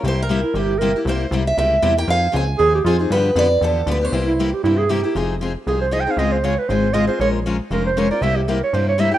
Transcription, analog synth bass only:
X:1
M:4/4
L:1/8
Q:"Swing" 1/4=235
K:Cphr
V:1 name="Analog synth bass" clef=bass
C,,4 G,,,4 | C,,2 C,,2 D,,2 =E,,2 | F,,2 D,,2 E,,2 F,,2 | G,,2 F,,2 =E,,2 =D,,2 |
C,,4 G,,4 | [K:Fm] F,,,4 C,,4 | D,,4 A,,,4 | B,,,4 F,,,4 |
C,,4 G,,4 |]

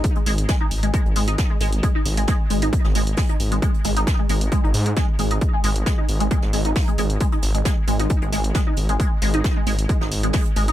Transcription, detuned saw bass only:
X:1
M:4/4
L:1/16
Q:1/4=134
K:D#phr
V:1 name="Detuned saw bass" clef=bass
z2 G,,,2 z2 G,,,2 z G,,, G,,,2 z2 G,,,2 | z2 G,,,2 z2 G,,,2 z G,,, G,,,2 z2 G,,,2 | z2 G,,,2 z2 G,,,2 z G,,, G,,2 z2 G,,,2 | z2 G,,,2 z2 G,,,2 z G,,, G,,,2 z2 G,,,2 |
z2 G,,,2 z2 G,,,2 z G,,, G,,,2 z2 G,,,2 | z2 G,,,2 z2 G,,,2 z G,,, G,,,2 z2 G,,,2 |]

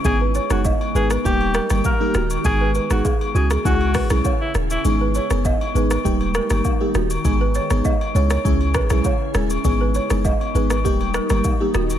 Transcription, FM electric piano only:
X:1
M:4/4
L:1/16
Q:1/4=100
K:G#m
V:1 name="FM electric piano"
[G,B,DG]3 [G,B,DG] z2 [G,B,DG]2 [=G,A,D=G]3 [G,A,DG] z [G,A,DG] z2 | [G,B,DG]3 [G,B,DG] z2 [G,CEG]2 [G,CEG]3 [G,CEG] z4 | [G,B,DG]3 [G,B,DG] z2 [G,B,DG]2 [=G,A,D=G]3 [G,A,DG] z [G,A,DG] z2 | [G,B,DG]3 [G,B,DG] z2 [G,CEG]2 [G,CEG]3 [G,CEG] z2 [G,CEG]2 |
[G,B,DG]3 [G,B,DG] z2 [G,B,DG]2 [=G,A,D=G]3 [G,A,DG] z [G,A,DG] z2 |]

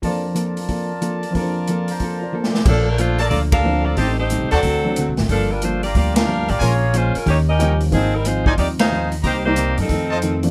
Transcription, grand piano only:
X:1
M:4/4
L:1/8
Q:"Swing" 1/4=182
K:Bb
V:1 name="Grand piano"
[F,,F,DAc]8 | [F,,F,B,Dc]4- [F,,F,B,Dc] [Fd]3 | z6 [F,A,CD]2 | [G,A,CE] z4 [^F,A,CD] z2 |
z8 | z6 [F,G,B,_D]2 | [F,B,CE] z6 z | z [G,B,Ed]3 z3 [F,A,CD] |]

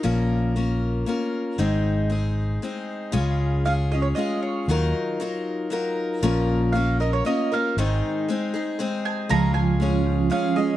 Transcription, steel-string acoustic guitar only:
X:1
M:3/4
L:1/8
Q:1/4=117
K:Db
V:1 name="Steel-string acoustic guitar"
[B,,F,B,DFB]2 [B,DFB]2 [B,DFB]2 | [A,,E,A,CEA]2 [A,CEA]2 [A,CEA]2 | [D,A,DFA]2 [A,DFA] [DFA] [A,DFA]2 | [E,G,EFB]2 [G,EFB]2 [G,EFB]2 |
[B,,F,B,DFB]2 [B,DFB] [B,DFB] [B,DFB] [B,DFB] | [A,,E,A,CEA]2 [A,CEA] [A,CEA] [A,CEA]2 | [D,A,DFA]2 [A,DFA]2 [A,DFA] [DFA] |]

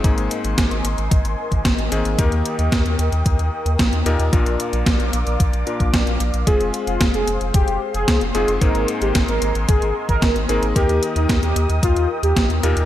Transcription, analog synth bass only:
X:1
M:4/4
L:1/16
Q:1/4=112
K:Ablyd
V:1 name="Analog synth bass" clef=bass
A,,, A,,, z A,,, A,,, A,,, A,,, A,,, A,,, A,,, z A,,, A,,, A,,, A,,, A,,, | E,, E,, z E,, E,, E,, E,, E,, E,, E,, z E,, B,,, E,, E,, E,, | B,,, B,,, z B,,, B,,, B,,, B,,, B,,, B,,, B,,, z B,,, B,,, B,,, B,,, B,,, | F,,, F,,, z F,,, F,,, F,,, F,,, F,,, F,,, F,,, z F,,, C,, F,,, F,,, F,,, |
A,,, A,,, z A,,, A,,, A,,, A,,, A,,, A,,, A,,, z A,,, A,,, A,,, A,,, A,,, | E,, E,, z E,, E,, E,, E,, E,, E,, E,, z E,, B,,, E,, E,, E,, |]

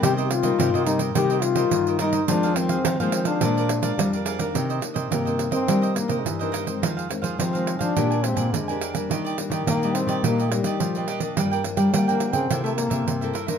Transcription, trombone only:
X:1
M:4/4
L:1/16
Q:1/4=106
K:Bbmix
V:1 name="Trombone"
G3/2 G/2 F4 E2 G2 F4 E2 | D2 C3 B, C D6- D z2 | [K:Cm] z4 B,3 C3 B,3/2 A,/2 G,3 z | z4 C3 D3 C2 A,3 z |
z4 B,2 C2 B,2 G,4 z2 | z4 B,3 C2 =A, B,4 z2 |]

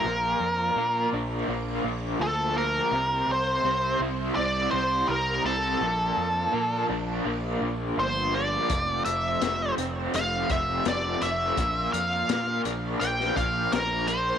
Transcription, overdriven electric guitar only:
X:1
M:4/4
L:1/8
Q:1/4=83
K:Bblyd
V:1 name="Overdriven electric guitar"
B,,2 B, D B, B,, F, B, | C,2 C E C C, G, C | B,,2 B, D B, B,, F, B, | F,,2 A, C A, C, F, A, |
B,,2 B, D B, B,, F, B, |]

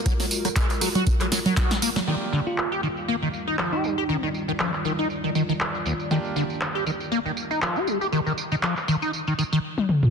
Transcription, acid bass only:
X:1
M:4/4
L:1/16
Q:"Swing 16ths" 1/4=119
K:Eb
V:1 name="Acid bass" clef=bass
_G, G, z G, A, z G, _G z G, G, G, G G, B, G, | E, z D, z2 G E, z B, E, z E F, G G, G | E, E, z E, F, z E, E z E, E, E, z2 E,, z | E, z D, z2 G E, z B, E, z E F, G G, G |
E, E, z E, F, z E, E z E, E, E, z4 |]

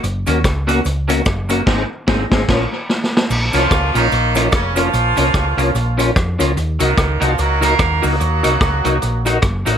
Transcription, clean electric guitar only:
X:1
M:4/4
L:1/8
Q:"Swing" 1/4=147
K:Bbm
V:1 name="Clean electric guitar"
z [G,B,DG] z [G,B,DG] z [G,B,DG] z [G,B,DG] | [A,CEA] z [A,CEA] [A,CEA] [F,B,DF] z3 | z [F,B,DF] z [F,B,DF] z [F,B,DF] z [F,B,DF] | z [F,B,DF] z [F,B,DF] z [F,B,DF] z [F,B,DF] |
z [G,B,EG] z [G,B,EG] z [G,B,EG] z [G,B,EG] | z [G,B,EG] z [G,B,EG] z [G,B,EG] z [G,B,EG] |]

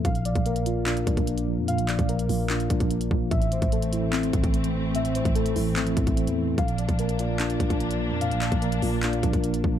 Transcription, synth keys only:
X:1
M:4/4
L:1/8
Q:1/4=147
K:Bblyd
V:1 name="Synth keys"
f d B F D4 | f d B F D4 | e c A E C4 | e c A E C4 |
f d B F D4 | f d B F D4 |]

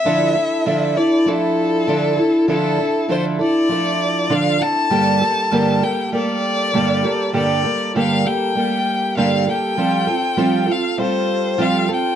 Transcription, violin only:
X:1
M:4/4
L:1/8
Q:1/4=99
K:Dm
V:1 name="Violin"
e3 d A4 | A2 c d3 f a- | a3 g d4 | d2 f g3 f g- |
g3 f c2 f g |]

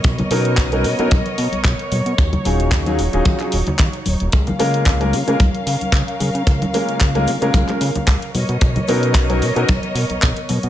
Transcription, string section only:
X:1
M:4/4
L:1/8
Q:"Swing 16ths" 1/4=112
K:Dbmix
V:1 name="String section"
[CBde]8 | [G,E]8 | [DBf]8- | [DBf]6- [DBf] [CBde]- |
[CBde]8 |]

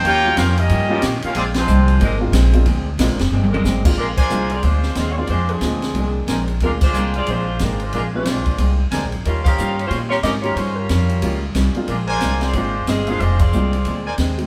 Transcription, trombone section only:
X:1
M:4/4
L:1/8
Q:"Swing" 1/4=182
K:Bb
V:1 name="Trombone section"
[B,_DG]2 [B,DF] [G,B,E]3 z [B,DF] | [F,_A,D] [F,A,C]4 z3 | z8 | [K:Bbmix] z8 |
z8 | z8 | z8 | z8 |
z8 | z8 | z8 |]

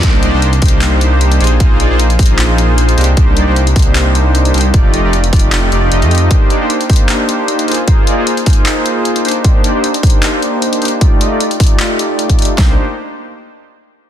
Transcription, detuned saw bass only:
X:1
M:4/4
L:1/16
Q:"Swing 16ths" 1/4=153
K:Cm
V:1 name="Detuned saw bass" clef=bass
C,,2 C,, C,,3 C,,8 B,,,2 | B,,,2 B,,, B,,,3 B,,,8 C,,2 | C,,2 C,, C,,3 C,,8 C,,2 | F,,,2 F,,, F,,,3 F,,,4 F,,,2 F,,, F,,3 |
z16 | z16 | z16 | z16 |
C,,2 z12 z2 |]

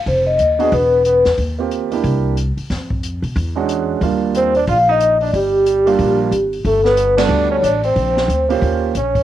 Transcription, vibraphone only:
X:1
M:4/4
L:1/16
Q:"Swing" 1/4=182
K:Eb
V:1 name="Vibraphone"
c2 e6 =B4 B3 z | z16 | z16 | z4 c2 d2 f2 e4 d2 |
G12- G2 z2 | =A2 =B4 d4 _d2 =d2 c2- | c6 z6 _d4 |]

